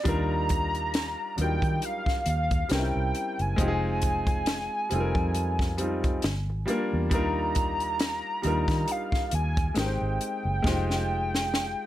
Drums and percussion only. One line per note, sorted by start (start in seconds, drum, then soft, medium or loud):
0.05 kick loud
0.05 closed hi-hat medium
0.49 kick medium
0.49 closed hi-hat medium
0.75 closed hi-hat soft
0.94 snare loud
0.94 closed hi-hat medium
1.38 closed hi-hat medium
1.62 kick loud
1.62 closed hi-hat soft
1.82 closed hi-hat medium
2.06 kick medium
2.06 snare soft
2.26 closed hi-hat medium
2.51 kick loud
2.51 closed hi-hat soft
2.69 snare loud
2.69 closed hi-hat medium
3.15 closed hi-hat medium
3.39 closed hi-hat soft
3.58 kick loud
3.58 closed hi-hat medium
4.02 kick medium
4.02 closed hi-hat medium
4.27 kick loud
4.27 closed hi-hat soft
4.46 snare loud
4.46 closed hi-hat medium
4.91 closed hi-hat medium
5.15 kick loud
5.35 closed hi-hat medium
5.59 kick medium
5.59 snare soft
5.78 closed hi-hat medium
6.04 kick loud
6.04 closed hi-hat soft
6.22 snare loud
6.22 closed hi-hat medium
6.68 closed hi-hat medium
7.11 kick loud
7.11 closed hi-hat medium
7.55 kick medium
7.55 closed hi-hat medium
7.80 closed hi-hat soft
7.99 snare loud
7.99 closed hi-hat medium
8.43 closed hi-hat medium
8.68 kick loud
8.68 snare soft
8.68 closed hi-hat soft
8.88 closed hi-hat medium
9.12 kick medium
9.12 snare soft
9.31 closed hi-hat medium
9.57 kick loud
9.57 closed hi-hat soft
9.75 snare loud
9.75 closed hi-hat medium
10.21 closed hi-hat medium
10.64 kick loud
10.64 snare medium
10.90 snare medium
11.35 snare medium
11.54 snare medium